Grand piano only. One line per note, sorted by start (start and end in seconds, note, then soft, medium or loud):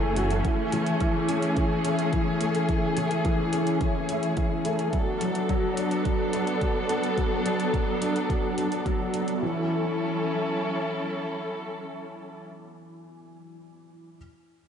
0.00 0.45 E3 medium
0.00 0.46 C#4 medium
0.00 0.46 E4 medium
0.00 0.47 A4 medium
0.17 0.43 F#4 medium
0.45 0.71 E3 medium
0.73 0.99 E3 medium
1.01 1.27 E3 medium
1.29 1.55 C#4 medium
1.57 1.83 E3 medium
1.85 2.11 E4 medium
2.13 2.29 E3 medium
2.41 2.68 A3 medium
2.69 2.95 E3 medium
2.97 3.23 E3 medium
3.25 3.52 E3 medium
3.53 3.80 C#4 medium
3.81 4.08 E3 medium
4.09 4.36 E4 medium
4.37 4.53 E3 medium
4.65 4.92 A3 medium
4.93 5.20 F#3 medium
5.21 5.48 F#3 medium
5.49 5.76 F#3 medium
5.78 6.04 D4 medium
6.06 6.32 F#3 medium
6.34 6.60 F#4 medium
6.62 6.77 F#3 medium
6.89 7.16 B3 medium
7.18 7.44 F#3 medium
7.46 7.72 F#3 medium
7.73 8.00 F#3 medium
8.02 8.28 D4 medium
8.29 8.56 F#3 medium
8.58 8.74 D4 medium
8.86 9.12 F#3 medium
9.14 9.40 B3 medium
9.42 9.68 E3 medium